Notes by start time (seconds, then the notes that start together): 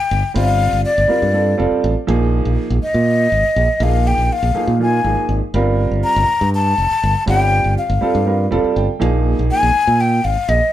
Already playing: G5
0.11 G1
0.34 G1 G3 C4 F4 C5 F5
0.73 G1
0.85 D5
0.98 G1
1.08 G3 C4 F4 A#4, muted fingered electric bass stroke
1.22 G2
1.33 G3 C4 F4 A4
1.57 F1 G3 C4 F4 A4 D5
1.72 muted fingered electric bass stroke
1.84 A1
2.07 A#1 F3 A#3 D#4 G#4
2.45 A#1
2.70 A#1
2.83 D#5, muted fingered electric bass stroke
2.94 A#2
3.32 G#1
3.44 muted fingered electric bass stroke
3.56 A#1
3.80 A#1 F3 A#3 D#4 G#4 F5
4.07 G5
4.18 A#1
4.33 F5
4.43 A#1
4.54 F3 A#3 D#4 G#4, muted fingered electric bass stroke
4.67 A#2
4.80 F3 A#3 D#4 F4 G#5
5.04 G#1 F3 A#3 D#4 G#4
5.17 muted fingered electric bass stroke
5.29 G#1
5.54 G1 G3 C4 F4 A#4
5.91 G1
6.04 A#5
6.16 G1
6.41 G2
6.55 A5
6.78 F1
6.91 muted fingered electric bass stroke
7.04 G1
7.26 G1 G3 C4 F4 G4 G5
7.64 G1
7.78 F5
7.90 G1
8.01 G3 C4 F4 A4, muted fingered electric bass stroke
8.15 G2
8.26 G3 C4 F4 A#4
8.51 F1 G3 C4 F4 A4 D5
8.64 muted fingered electric bass stroke
8.76 G1 G5
9.00 A#1 F3 A#3 D#4 G#4
9.39 A#1
9.51 G#5
9.63 A#1
9.87 A#2
10.00 G5
10.25 G#1 F5
10.37 muted fingered electric bass stroke
10.49 A#1 D#5